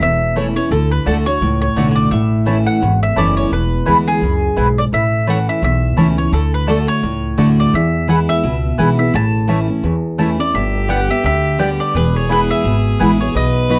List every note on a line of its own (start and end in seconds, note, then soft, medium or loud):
0.00 0.54 E1 medium
0.00 0.68 E2 medium
0.00 0.35 E5 medium
0.36 0.55 E3 loud
0.36 0.46 A3 medium
0.36 0.55 A3 loud
0.36 0.56 C#4 medium
0.36 0.46 E4 medium
0.36 0.55 E4 loud
0.36 0.47 C#5 medium
0.36 0.46 A5 medium
0.56 0.72 C#4 soft
0.56 0.71 E4 medium
0.56 0.71 C#5 medium
0.71 0.98 D2 loud
0.71 1.05 D3 medium
0.71 0.90 A4 medium
0.92 1.07 B4 medium
1.06 1.36 D2 medium
1.06 1.25 D3 medium
1.06 1.16 A3 medium
1.06 1.25 A3 medium
1.06 1.26 D4 medium
1.06 1.16 F#4 medium
1.06 1.25 F#4 medium
1.06 1.26 A4 medium
1.06 1.16 D5 loud
1.06 1.17 A5 loud
1.26 1.42 D4 soft
1.26 1.41 F#4 medium
1.26 1.60 C#5 loud
1.41 1.71 C#2 medium
1.41 2.09 A2 medium
1.62 1.90 C#5 loud
1.76 2.06 B1 medium
1.76 2.11 D3 loud
1.76 1.86 A3 medium
1.76 2.11 A3 loud
1.76 2.11 D4 loud
1.76 1.87 F#4 loud
1.76 2.11 F#4 loud
1.76 1.87 D5 medium
1.76 1.87 A5 medium
1.91 1.95 C#5 medium
1.95 2.10 D5 medium
2.11 2.65 A1 medium
2.11 2.79 A2 medium
2.11 2.68 E5 medium
2.46 2.80 E3 medium
2.46 2.56 A3 medium
2.46 2.81 A3 medium
2.46 2.81 C#4 medium
2.46 2.57 E4 medium
2.46 2.81 E4 medium
2.46 2.57 C#5 medium
2.46 2.57 A5 loud
2.66 2.99 F#5 loud
2.82 3.12 G#1 medium
2.82 3.49 E2 medium
3.03 3.18 E5 loud
3.16 3.47 F#1 medium
3.16 3.50 E3 loud
3.16 3.26 A3 medium
3.16 3.51 A3 loud
3.16 3.51 C#4 loud
3.16 3.27 E4 medium
3.16 3.51 E4 loud
3.16 3.27 C#5 medium
3.16 3.36 D5 medium
3.16 3.27 A5 loud
3.37 3.51 C#5 medium
3.52 3.79 E1 medium
3.52 4.19 E2 medium
3.52 4.09 B4 medium
3.86 4.17 D2 medium
3.86 4.21 E3 medium
3.86 4.21 G#3 medium
3.86 3.96 B3 medium
3.86 4.21 B3 medium
3.86 3.97 E4 loud
3.86 4.22 E4 medium
3.86 3.97 B4 medium
3.86 3.97 G#5 medium
4.08 4.79 G#4 medium
4.21 4.52 C#2 medium
4.21 4.56 F#2 medium
4.56 4.87 B1 medium
4.56 4.91 G#2 loud
4.56 4.67 B3 medium
4.56 4.67 E4 medium
4.56 4.67 B4 loud
4.56 4.67 G#5 loud
4.78 4.83 D5 medium
4.93 5.46 A1 medium
4.93 5.60 A2 medium
4.93 5.26 E5 loud
5.27 5.61 E3 medium
5.27 5.37 A3 medium
5.27 5.61 A3 medium
5.27 5.61 C#4 medium
5.27 5.37 E4 medium
5.27 5.62 E4 medium
5.27 5.37 C#5 medium
5.27 5.47 F#5 loud
5.27 5.38 A5 medium
5.49 5.63 E5 medium
5.62 5.92 B1 loud
5.62 6.30 E2 medium
5.62 5.96 E5 medium
5.97 6.27 C#2 medium
5.97 6.16 E3 medium
5.97 6.07 A3 medium
5.97 6.17 A3 medium
5.97 6.17 C#4 loud
5.97 6.07 E4 medium
5.97 6.15 E4 loud
5.97 6.07 C#5 loud
5.97 6.08 A5 loud
6.16 6.33 C#4 medium
6.16 6.32 E4 medium
6.16 6.32 C#5 medium
6.32 6.86 D2 loud
6.32 6.67 D3 medium
6.32 6.53 A4 medium
6.54 6.68 B4 medium
6.67 7.01 D3 medium
6.67 6.77 A3 medium
6.67 7.02 A3 medium
6.67 7.02 D4 medium
6.67 6.78 F#4 medium
6.67 7.02 F#4 medium
6.67 6.88 A4 medium
6.67 6.78 D5 medium
6.67 6.78 A5 loud
6.88 7.59 C#5 loud
7.03 7.33 C#2 medium
7.03 7.70 A2 medium
7.37 7.68 D2 medium
7.37 7.71 D3 loud
7.37 7.48 A3 medium
7.37 7.72 A3 medium
7.37 7.72 D4 loud
7.37 7.48 F#4 medium
7.37 7.73 F#4 loud
7.37 7.48 D5 loud
7.37 7.48 A5 loud
7.60 7.73 D5 medium
7.73 8.40 E2 loud
7.73 8.27 E2 loud
7.73 8.07 E5 loud
8.08 8.42 E3 medium
8.08 8.42 G#3 medium
8.08 8.18 B3 medium
8.08 8.42 B3 medium
8.08 8.18 E4 loud
8.08 8.43 E4 medium
8.08 8.18 B4 medium
8.08 8.15 F#5 medium
8.08 8.19 G#5 loud
8.29 8.98 E5 loud
8.44 8.74 C#2 medium
8.44 9.11 B2 medium
8.78 9.09 B1 medium
8.78 8.97 E3 medium
8.78 8.98 G#3 loud
8.78 8.88 B3 medium
8.78 8.98 B3 loud
8.78 8.88 E4 loud
8.78 8.97 E4 loud
8.78 8.88 B4 loud
8.78 8.89 G#5 loud
8.98 9.14 B3 soft
8.98 9.13 E4 medium
8.98 9.13 E5 loud
9.14 9.68 A1 loud
9.14 9.81 A2 loud
9.14 10.16 A5 loud
9.48 9.67 E3 medium
9.48 9.58 A3 loud
9.48 9.67 A3 medium
9.48 9.68 C#4 medium
9.48 9.58 E4 medium
9.48 9.67 E4 medium
9.48 9.59 C#5 medium
9.48 9.59 A5 loud
9.68 9.84 C#4 soft
9.68 9.83 E4 medium
9.83 10.37 E2 medium
9.83 10.51 E2 medium
10.18 10.37 E3 medium
10.18 10.29 A3 loud
10.18 10.38 A3 medium
10.18 10.38 C#4 medium
10.18 10.29 E4 medium
10.18 10.37 E4 loud
10.18 10.29 C#5 medium
10.18 10.29 A5 medium
10.38 10.54 C#4 soft
10.38 10.53 E4 medium
10.38 10.55 D5 medium
10.54 11.08 G1 medium
10.54 11.21 G2 medium
10.54 11.90 G4 loud
10.54 10.90 E5 loud
10.88 11.08 D3 medium
10.88 11.08 G3 medium
10.88 10.99 B3 medium
10.88 11.08 B3 medium
10.88 10.99 G4 loud
10.88 11.07 G4 medium
10.88 10.99 D5 medium
10.88 11.10 F#5 loud
10.88 10.99 G5 loud
11.09 11.25 B3 soft
11.09 11.24 G4 medium
11.09 11.25 E5 loud
11.24 11.78 D2 medium
11.24 11.57 D3 medium
11.24 11.58 E5 loud
11.58 11.92 D3 medium
11.58 11.93 G3 loud
11.58 11.69 B3 medium
11.58 11.93 B3 loud
11.58 11.69 G4 medium
11.58 11.93 G4 loud
11.58 11.69 D5 medium
11.58 11.69 G5 loud
11.80 11.94 D5 medium
11.94 12.48 E1 loud
11.94 12.62 E2 medium
11.94 13.36 G#4 loud
11.94 12.14 B4 medium
12.16 12.31 C#5 medium
12.29 12.63 E3 medium
12.29 12.63 G#3 medium
12.29 12.39 B3 loud
12.29 12.63 B3 medium
12.29 12.39 E4 loud
12.29 12.64 E4 medium
12.29 12.40 B4 medium
12.29 12.50 B4 medium
12.29 12.40 G#5 medium
12.51 13.20 E5 loud
12.64 12.94 G#1 medium
12.64 13.32 B2 medium
12.99 13.30 A1 medium
12.99 13.18 E3 medium
12.99 13.19 G#3 medium
12.99 13.09 B3 medium
12.99 13.19 B3 loud
12.99 13.10 E4 medium
12.99 13.17 E4 loud
12.99 13.10 B4 medium
12.99 13.10 G#5 loud
13.18 13.35 B3 soft
13.18 13.34 E4 medium
13.18 13.35 C#5 medium
13.35 13.79 B1 medium
13.35 13.79 B2 loud
13.35 13.79 B4 loud
13.35 13.79 D#5 loud
13.69 13.79 F#3 medium
13.69 13.79 B3 medium
13.69 13.79 D#4 medium
13.69 13.79 F#4 medium
13.69 13.79 D#5 loud
13.69 13.79 B5 medium